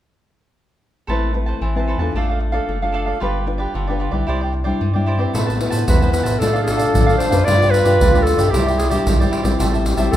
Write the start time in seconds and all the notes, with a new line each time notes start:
1.07 A1 A3 C4 E4 A4 B4 C5 A5
1.34 C4 E4 B4, muted cavaquinho stroke
1.46 B4 C5 A5
1.61 A1 E3 A4 B4 C5 A5
1.75 C4 E4 B4 C5 A5
1.87 A4 B4 C5 A5
1.98 E2 D4 F4 A4 B4 C5 A5
2.15 A1 A3 D4 A4 D5 F5
2.29 A4 D5 F5
2.40 muted cavaquinho stroke
2.52 D4 F4 A4 D5 F5
2.68 F#1 A3
2.82 D4 F4 A4 D5 F5
2.92 D4 A4 D5 F5
3.06 A4 D5 F5
3.20 G1 G3 D4 F4 G4 B4 D5
3.46 D4 F4 B4, muted cavaquinho stroke
3.58 G4 B4 D5
3.74 G1 D3 F4 G4 B4 D5
3.87 D4 F4 G4 B4 D5
3.99 F4 G4 B4 D5
4.11 B1 G3 D4 E4 G4 B4 D5
4.27 C2 C3 E4 G4 C5 D5
4.41 G4 C5 D5
4.53 muted cavaquinho stroke
4.64 G3 D4 E4 G4 C5 D5
4.81 G2 G3
4.94 G3 D4 E4 G4 C5 D5
5.06 E4 G4 C5 D5
5.18 C4 E4 G4 B4 C5 D5
5.33 A2 A3 B3 A4 B4 C5 A5, pandeiro, shaker, surdo
5.46 B4 C5 A5, pandeiro, shaker, surdo
5.58 E4 B4, muted cavaquinho stroke, pandeiro
5.70 A2 B4 C5 A5, pandeiro, shaker
5.87 E2 E3 A4 B4 C5 A5, pandeiro, shaker, surdo
6.01 E4 B4 C5 A5, pandeiro, shaker
6.12 B4, muted cavaquinho stroke, pandeiro, shaker
6.23 A2 B4 C5 A5, pandeiro, shaker, surdo
6.39 A2 A3 D4 F4 A4 D5 F5, pandeiro, shaker, surdo
6.53 A4 D5 F5, pandeiro, shaker
6.63 D4 A4
6.68 F4 A4, pandeiro, shaker, surdo
6.77 A4 D5 F5, pandeiro, shaker
6.94 A2 A3, pandeiro, shaker, surdo
7.06 D4 F4 A4 D5 F5, pandeiro, shaker
7.18 D4 A4 C5 D5 F5, pandeiro, shaker, surdo
7.31 F#2 D4 F4 A4 B4 D5 F5, pandeiro, shaker, surdo
7.45 G2 G3 F4 G4 B4 D5, pandeiro, shaker, surdo
7.49 D5
7.60 G4 B4 D5, pandeiro, shaker, surdo
7.70 B4, muted cavaquinho stroke, pandeiro, shaker
7.84 G2 D4 F4 G4 B4 D5, pandeiro, shaker
8.00 D2 D3 F4 G4 B4 D5, pandeiro, shaker, surdo
8.14 D4 F4 G4 B4 D5, pandeiro, shaker
8.23 A4, muted cavaquinho stroke
8.27 pandeiro, shaker
8.37 G2 G4 B4 D5, pandeiro, shaker, surdo
8.46 D#4
8.51 C2 C3 G3 D4 E4 G4, pandeiro, shaker, surdo
8.55 E4 C5 D5
8.66 G4 C5 D5, pandeiro, shaker
8.78 G#4, pandeiro, shaker, surdo
8.90 G3 D4 E4 G4 C5 D5, pandeiro, shaker
9.06 C2 G3, pandeiro, shaker, surdo
9.20 G3 D4 E4 G4 C5 D5, pandeiro, shaker
9.31 E4 G4 C5 D5, pandeiro, surdo
9.43 A#1 G3 C4 E4 G4 C5 D5, pandeiro, shaker, surdo
9.59 A1 A2 G4 C5 E5 A5, pandeiro, shaker, surdo
9.73 C5 E5 A5, pandeiro, shaker, surdo
9.86 muted cavaquinho stroke, pandeiro, shaker
9.97 A1 G3 C4 E4 C5 E5 A5, pandeiro, shaker
10.11 E2 G4 A4 C5 E5, pandeiro, shaker, surdo